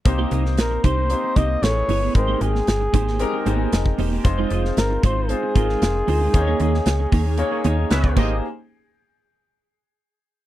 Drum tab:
CC |----------------|----------------|----------------|--------------x-|
HH |x-x-x-x-x-x-x-o-|x-x-x-x-x-x-x-o-|x-x-x-x-x-x-x-o-|x-x-x-o-x-x-x---|
SD |---oo-------o---|---oo--o----o---|---oo------oo---|---oo-------o---|
BD |o-----o---o-----|o-----o------o--|o-----o---o-----|o-----o------oo-|

CC |----------------|
HH |----------------|
SD |----------------|
BD |----------------|